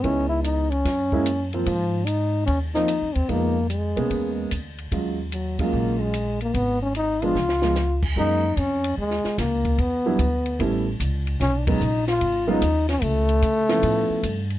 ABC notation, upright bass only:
X:1
M:4/4
L:1/8
Q:"Swing" 1/4=148
K:Gb
V:1 name="Upright bass" clef=bass
D,,4 G,,4 | A,,4 E,,2- (3E,, F,, E,, | F,,3 C, =E,,2 =D,,2 | E,,4 B,,,4 |
A,,,4 D,,4 | G,,2 F,,2 E,, z D,,2 | =E,,2 =D,,2 =A,,,2 ^C,,2 | =B,,,2 _B,,,2 ^G,,,2 ^D,,2 |
D,,2 D,2 =A,, z =G,,2 |]